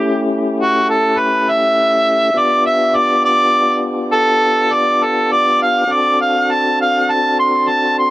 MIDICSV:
0, 0, Header, 1, 3, 480
1, 0, Start_track
1, 0, Tempo, 589971
1, 1901, Time_signature, 12, 3, 24, 8
1, 6593, End_track
2, 0, Start_track
2, 0, Title_t, "Harmonica"
2, 0, Program_c, 0, 22
2, 0, Note_on_c, 0, 67, 100
2, 201, Note_off_c, 0, 67, 0
2, 491, Note_on_c, 0, 66, 94
2, 709, Note_off_c, 0, 66, 0
2, 730, Note_on_c, 0, 69, 85
2, 961, Note_on_c, 0, 71, 82
2, 973, Note_off_c, 0, 69, 0
2, 1214, Note_on_c, 0, 76, 99
2, 1226, Note_off_c, 0, 71, 0
2, 1936, Note_on_c, 0, 74, 94
2, 1948, Note_off_c, 0, 76, 0
2, 2152, Note_off_c, 0, 74, 0
2, 2164, Note_on_c, 0, 76, 99
2, 2406, Note_on_c, 0, 74, 90
2, 2419, Note_off_c, 0, 76, 0
2, 2627, Note_off_c, 0, 74, 0
2, 2642, Note_on_c, 0, 74, 117
2, 3098, Note_off_c, 0, 74, 0
2, 3354, Note_on_c, 0, 69, 125
2, 3845, Note_on_c, 0, 74, 97
2, 3857, Note_off_c, 0, 69, 0
2, 4092, Note_on_c, 0, 69, 85
2, 4105, Note_off_c, 0, 74, 0
2, 4311, Note_off_c, 0, 69, 0
2, 4327, Note_on_c, 0, 74, 99
2, 4548, Note_off_c, 0, 74, 0
2, 4574, Note_on_c, 0, 77, 91
2, 4815, Note_on_c, 0, 74, 96
2, 4827, Note_off_c, 0, 77, 0
2, 5032, Note_off_c, 0, 74, 0
2, 5054, Note_on_c, 0, 77, 96
2, 5298, Note_on_c, 0, 81, 87
2, 5310, Note_off_c, 0, 77, 0
2, 5513, Note_off_c, 0, 81, 0
2, 5545, Note_on_c, 0, 77, 96
2, 5779, Note_on_c, 0, 81, 89
2, 5791, Note_off_c, 0, 77, 0
2, 5993, Note_off_c, 0, 81, 0
2, 6013, Note_on_c, 0, 84, 90
2, 6252, Note_on_c, 0, 81, 96
2, 6264, Note_off_c, 0, 84, 0
2, 6469, Note_off_c, 0, 81, 0
2, 6497, Note_on_c, 0, 84, 90
2, 6593, Note_off_c, 0, 84, 0
2, 6593, End_track
3, 0, Start_track
3, 0, Title_t, "Tonewheel organ"
3, 0, Program_c, 1, 16
3, 0, Note_on_c, 1, 57, 64
3, 0, Note_on_c, 1, 61, 66
3, 0, Note_on_c, 1, 64, 66
3, 0, Note_on_c, 1, 67, 65
3, 1874, Note_off_c, 1, 57, 0
3, 1875, Note_off_c, 1, 61, 0
3, 1876, Note_off_c, 1, 64, 0
3, 1876, Note_off_c, 1, 67, 0
3, 1902, Note_on_c, 1, 59, 66
3, 1903, Note_on_c, 1, 65, 69
3, 1904, Note_on_c, 1, 62, 64
3, 1906, Note_on_c, 1, 67, 68
3, 4753, Note_off_c, 1, 59, 0
3, 4754, Note_off_c, 1, 62, 0
3, 4754, Note_off_c, 1, 65, 0
3, 4756, Note_off_c, 1, 67, 0
3, 4777, Note_on_c, 1, 62, 64
3, 4778, Note_on_c, 1, 66, 65
3, 4779, Note_on_c, 1, 69, 69
3, 4780, Note_on_c, 1, 60, 66
3, 6593, Note_off_c, 1, 60, 0
3, 6593, Note_off_c, 1, 62, 0
3, 6593, Note_off_c, 1, 66, 0
3, 6593, Note_off_c, 1, 69, 0
3, 6593, End_track
0, 0, End_of_file